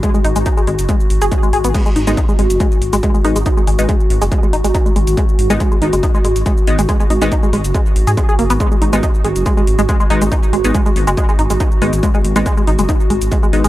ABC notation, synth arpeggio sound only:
X:1
M:4/4
L:1/16
Q:1/4=140
K:G#m
V:1 name="Synth arpeggio sound" clef=bass
G, G, D G, D G, G, z G, z2 G G, G, G B, | G, G, D G, D G, G, z G, z2 G, G, G, D G, | D G, G, z G, z2 G, G, G, D G, D G, G, z | G, z2 G, G, G, D G, D G, G, z G, z2 G, |
G, G, D G, D G, G, z G, z2 G G, G A, B, | G, G, D G, D z G, z G, G, z G, G, G, D G, | D z G, z G, G, z G, G, G, D G, D z G, z | G, G, z G, G, G, D G, D z G, z G, G, z G, |]